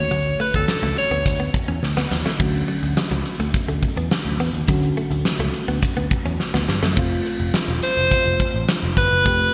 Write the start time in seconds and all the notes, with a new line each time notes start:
Already playing: D3 A3 C#4 F#4 C#5
0.11 D2 F#3, closed hi-hat
0.40 A3 B4, closed hi-hat
0.54 D2 A4, muted clean electric guitar stroke, kick
0.68 snare, closed hi-hat, tambourine
0.83 C#2 A3
0.97 C#5, muted clean electric guitar stroke, closed hi-hat
1.11 D2 B3
1.26 D2 C#5, kick, closed hi-hat
1.40 B3
1.54 muted clean electric guitar stroke, muted picked electric bass stroke, kick, closed hi-hat
1.68 E2 C#4
1.83 D2, snare
1.97 B3, snare
2.11 D#2, muted clean electric guitar stroke, snare
2.26 A3, snare
2.39 D2 D3 E3 F#3 A3 C#4 F#4, kick, crash
2.54 closed hi-hat
2.68 F#3, closed hi-hat
2.83 D2, muted clean electric guitar stroke, closed hi-hat
2.97 snare, tambourine
3.11 C#2 F#3, closed hi-hat
3.26 muted clean electric guitar stroke, closed hi-hat
3.40 D2 A3, closed hi-hat
3.54 kick, closed hi-hat
3.68 D2 A3, closed hi-hat
3.83 muted clean electric guitar stroke, kick, closed hi-hat
3.97 E2 B3, closed hi-hat
4.11 snare, tambourine
4.25 D2, closed hi-hat
4.39 E2 B3, open hi-hat
4.53 D#2, closed hi-hat
4.67 D2 D3 F#3 A3 C#4 F#4, kick, closed hi-hat
4.83 closed hi-hat
4.97 A3, closed hi-hat
5.11 D2, muted clean electric guitar stroke, closed hi-hat
5.25 snare, tambourine
5.39 C#2 A3, closed hi-hat
5.54 muted clean electric guitar stroke, closed hi-hat
5.68 D2 B3, closed hi-hat
5.82 kick, closed hi-hat
5.97 D2 B3, closed hi-hat
6.11 muted clean electric guitar stroke, kick, closed hi-hat
6.25 E2 C#4, closed hi-hat
6.40 snare
6.54 D2 B3, snare
6.68 G2, muted clean electric guitar stroke, snare
6.83 F#2 A3, snare
6.96 F1 A3 C4 F4, kick, crash
7.26 closed hi-hat
7.40 F1
7.54 snare, closed hi-hat, tambourine
7.68 E1
7.83 C5, closed hi-hat
7.97 F1
8.11 kick, closed hi-hat
8.26 F1
8.40 kick, closed hi-hat
8.54 A1
8.68 snare, closed hi-hat, tambourine
8.83 F1
8.97 G1 B4, kick, closed hi-hat
9.11 F#1
9.24 F1 A3 C4 G4, kick, closed hi-hat